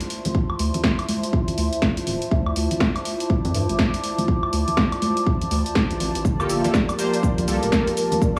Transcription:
Already playing: analog synth pad E4 F4 C5 D5 A5, ambient pad E5 C6
0.00 closed hi-hat
0.10 open hi-hat
0.25 closed hi-hat, high conga, low conga
0.35 kick
0.50 high woodblock
0.59 analog synth bass D2, open hi-hat
0.74 closed hi-hat, low conga
0.84 kick, snare
0.99 closed hi-hat, high woodblock
1.09 open hi-hat, high conga
1.23 closed hi-hat
1.33 kick
1.48 closed hi-hat, low conga
1.58 analog synth bass D2, open hi-hat
1.73 closed hi-hat
1.82 analog synth bass A1, kick, snare
1.97 closed hi-hat
2.06 analog synth bass D1, open hi-hat, low conga
2.22 closed hi-hat
2.31 analog synth bass D2, kick
2.46 ambient pad D6, high woodblock
2.56 analog synth bass D2, open hi-hat
2.71 closed hi-hat, low conga
2.80 kick, snare
2.96 closed hi-hat, high woodblock
3.05 open hi-hat
3.20 closed hi-hat
3.30 kick
3.45 analog synth bass F2, closed hi-hat, low conga
3.54 analog synth bass G2, open hi-hat
3.69 analog synth bass A1, closed hi-hat, high conga
3.79 kick, snare
3.94 closed hi-hat
4.04 open hi-hat
4.18 closed hi-hat, high conga, low conga
4.28 kick
4.43 high woodblock
4.53 analog synth bass D2, open hi-hat
4.68 closed hi-hat, low conga
4.77 kick, snare
4.92 closed hi-hat, high woodblock
5.02 open hi-hat, high conga
5.17 closed hi-hat
5.26 kick
5.41 closed hi-hat, low conga
5.51 analog synth bass D2, open hi-hat
5.66 closed hi-hat
5.75 kick, snare
5.91 analog synth bass A1, closed hi-hat
6.00 analog synth bass A1, open hi-hat, low conga
6.15 analog synth bass A1, closed hi-hat
6.25 analog synth bass G1, ambient pad F3, analog synth pad F4 G4 A#4, kick, shaker
6.40 synth keys A#3 F4 G4 A4, high woodblock, shaker
6.49 analog synth bass G1, ambient pad A#3, open hi-hat, shaker
6.56 vibraphone E5
6.64 synth keys A#3 F4 G4 A4, vibraphone D5, closed hi-hat, low conga, shaker
6.74 ambient pad A5, kick, snare, shaker
6.89 closed hi-hat, high woodblock, shaker
6.98 synth keys A#3 F4 G4 C5, open hi-hat, shaker
7.14 vibraphone D5, closed hi-hat, shaker
7.23 kick, shaker
7.38 analog synth bass A#1, closed hi-hat, low conga, shaker
7.48 analog synth bass C2, synth keys A#3 F4 G4 A4, open hi-hat, shaker
7.63 analog synth bass D1, vibraphone A#4, closed hi-hat, high conga, shaker
7.72 synth keys A#3 F4 G4 A4, vibraphone A#4, kick, snare, shaker
7.87 closed hi-hat
7.97 open hi-hat, shaker
8.12 closed hi-hat, high conga, low conga, shaker
8.22 vibraphone D5, kick, shaker

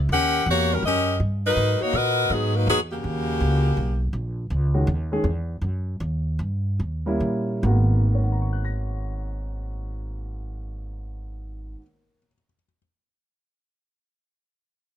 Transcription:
0.09 upright bass D#2, saxophone section C#4 G4
0.13 saxophone section A#4 F#5
0.46 upright bass E2, saxophone section F#4
0.50 saxophone section A#3 G4 C#5
0.73 saxophone section G3 C#4 F#4 A#4
0.82 upright bass F#2, saxophone section C#4 G4 A#4 D#5
1.20 upright bass G2
1.46 saxophone section F#3 D#4 A#4 B4
1.56 upright bass G#2
1.81 saxophone section A#3 D#4 F#4 C#5, muted upright bass stroke
1.93 upright bass A#2, saxophone section F#4 A#4 B4 D#5
2.30 upright bass G#2, saxophone section F#3 B3 D#4 G#4
2.56 saxophone section F#3 A#3 D#4 B4
2.67 upright bass E2, saxophone section F#3 B3 D#4 G#4
2.92 saxophone section C#3 A#3 F#4 G4
3.04 upright bass D#2
3.40 upright bass C#2
3.77 upright bass B1
4.13 upright bass A#1
4.50 upright bass C#2
4.74 grand piano D#3 G#3 C#4 F#4
4.87 upright bass D#2
5.12 grand piano D#3 G#3 C#4 G#4
5.24 upright bass E2
5.61 upright bass F#2
6.00 upright bass D#2
6.39 upright bass G2
6.79 upright bass D#2
7.06 grand piano G3 A#3 C#4 E4
7.20 upright bass A#2
7.63 upright bass G#1, grand piano G#2 D#3 A#3 B3 F#4
8.07 grand piano A#4
8.15 grand piano C#5
8.23 grand piano F#5
8.32 grand piano A#5
8.42 grand piano C#6
8.53 grand piano F#6
8.65 grand piano A#6

